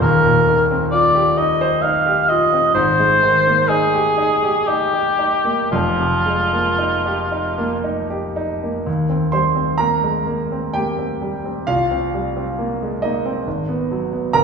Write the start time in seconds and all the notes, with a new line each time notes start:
0.00 D#1 D#2 A#4
0.25 A#2
0.49 D#3
0.71 C4
0.91 F4 D5
1.15 G4
1.37 D#4 D#5
1.61 C5
1.82 D#4 F5
2.06 G4
2.29 F4 D#5
2.53 C4
2.74 G#1 G#2 C5
2.99 G#3
3.22 D#3
3.47 A#3
3.69 D#4 G#4
3.94 G4
4.17 D#4
4.43 G4
4.68 D#4 G4
4.93 G4
5.19 D#4
5.45 A#3
5.71 F1 F2 F4
5.99 C3
6.26 G#3
6.53 A#3
6.78 D#4
7.06 G4
7.32 D#4
7.58 A#3
7.84 D#4
8.10 G4
8.36 D#4
8.63 A#3
8.86 D#2
9.09 C4
9.32 G3 C5 C6
9.55 C4
9.78 A#3 A#4 A#5
10.04 G#3
10.27 A#3
10.52 C4
10.74 A#3 G4 G5
10.99 C4
11.22 G3
11.45 C4
11.67 C2 F4 F5
11.91 C4
12.14 G3
12.36 C4
12.58 A#3
12.82 G#3
13.02 A#3 D#4 D#5
13.25 C4
13.47 G#1
13.69 B3
13.91 F#3
14.13 B3
14.33 G1 A#4 A#5